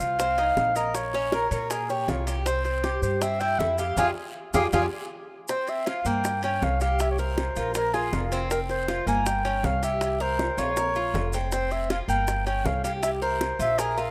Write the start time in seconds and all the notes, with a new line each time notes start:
Already playing: F4
0.00 C2 F5, short guiro, maracas
0.19 C4, high bongo, high timbale, long guiro, maracas
0.38 D#4, high bongo, high timbale, maracas
0.57 A#1, high bongo, low bongo, low timbale, short guiro, maracas
0.76 A#4 D#5, high bongo, high timbale, short guiro, maracas
0.95 C#5, high bongo, high timbale, long guiro, maracas
1.14 C#4, high bongo, maracas
1.32 A#4, high bongo, high timbale, short guiro, maracas
1.51 A#2 A#4 C#5, high timbale, short guiro, maracas
1.70 G#4 A#4, high bongo, high timbale, long guiro, maracas
1.89 G4 C#5, high bongo, maracas
2.08 C2 F4, high bongo, low bongo, high timbale, low timbale, short guiro, maracas
2.27 G4, high bongo, high timbale, short guiro, maracas
2.46 C4 C5, high bongo, long guiro, maracas
2.65 C5, high bongo, high timbale, maracas
2.84 G4, high bongo, high timbale, short guiro, maracas
3.02 G2 C5, short guiro, maracas
3.21 C4 E5, high bongo, high timbale, long guiro, maracas
3.40 E4 G5, high bongo, high timbale, maracas
3.59 F2 E5, high bongo, low bongo, low timbale, short guiro, maracas
3.78 G4 F5, high bongo, high timbale, short guiro, maracas
3.97 F2 F4 G4 G#4 F5, low bongo, high timbale, long guiro, maracas
4.54 F2 F4 G4 G#4 F5, low bongo, high timbale, long guiro, maracas
4.72 F2 F4 G4 G#4 F5, low bongo, high timbale, long guiro, maracas
5.48 C4 C5, high bongo, long guiro, maracas
5.67 E5, high bongo, high timbale, maracas
5.86 F4 F5, high bongo, high timbale, short guiro, maracas
6.05 G2 A#3 G5, short guiro, maracas
6.24 high bongo, high timbale, long guiro, maracas
6.43 C#4 G5, high bongo, high timbale, maracas
6.62 C2 F5, high bongo, low bongo, low timbale, short guiro, maracas
6.80 G4 F5, high bongo, high timbale, short guiro, maracas
6.99 E5, high bongo, high timbale, long guiro, maracas
7.11 C#5
7.18 A#4 C5, high bongo, maracas
7.37 high bongo, high timbale, short guiro, maracas
7.56 A#1 F4 A#4, high timbale, short guiro, maracas
7.74 A#4, high bongo, high timbale, long guiro, maracas
7.94 F4 G#4, high bongo, maracas
8.13 F1 F4, high bongo, low bongo, high timbale, low timbale, short guiro, maracas
8.32 C4, high bongo, high timbale, short guiro, maracas
8.51 C4 A#4, high bongo, long guiro, maracas
8.69 C5, high bongo, high timbale, maracas
8.88 F4, high bongo, high timbale, short guiro, maracas
9.07 G1 A#3 G#5, short guiro, maracas
9.26 G5, high bongo, high timbale, long guiro, maracas
9.45 C#4, high bongo, high timbale, maracas
9.63 C2 F5, high bongo, low bongo, low timbale, short guiro, maracas
9.83 G4 E5, high bongo, high timbale, short guiro, maracas
10.01 high bongo, high timbale, long guiro, maracas
10.20 A#4 C5, high bongo, maracas
10.39 high bongo, high timbale, short guiro, maracas
10.57 A#1 F4 C#5, low timbale, short guiro, maracas
10.77 A#4, high bongo, low timbale, long guiro, maracas
10.95 F4, high bongo, maracas
11.14 F1, high bongo, low bongo, low timbale, short guiro, maracas
11.33 C4, high bongo, low timbale, short guiro, maracas
11.52 C4 C5, high bongo, long guiro, maracas
11.71 E5, high bongo, high timbale, maracas
11.90 F4 F5, high bongo, high timbale, short guiro, maracas
12.08 G1 A#3 G5, short guiro, maracas
12.28 high bongo, high timbale, long guiro, maracas
12.46 C#4 G5, high bongo, high timbale, maracas
12.65 C2 F5, high bongo, low bongo, low timbale, short guiro, maracas
12.84 G4 F5, high bongo, high timbale, short guiro, maracas
13.03 E5, high bongo, high timbale, long guiro, maracas
13.22 A#4 C5, high bongo, maracas
13.41 high bongo, high timbale, short guiro, maracas
13.59 A#1 F4 E5, high timbale, short guiro, maracas
13.78 G#4 A#4, high bongo, high timbale, long guiro, maracas
13.97 F4 A#4, high bongo, maracas